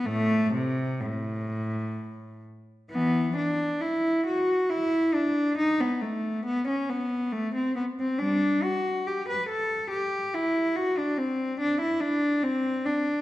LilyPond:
\new Staff \with { instrumentName = "Cello" } { \time 3/4 \key a \minor \tempo 4 = 69 <a, a>8 c8 a,4. r8 | \key e \minor <e b>8 d'8 e'8 fis'8 e'8 d'8 | dis'16 b16 a8 b16 cis'16 b8 a16 c'16 b16 c'16 | <g d'>8 fis'8 g'16 b'16 a'8 g'8 e'8 |
fis'16 d'16 c'8 d'16 e'16 d'8 c'8 d'8 | }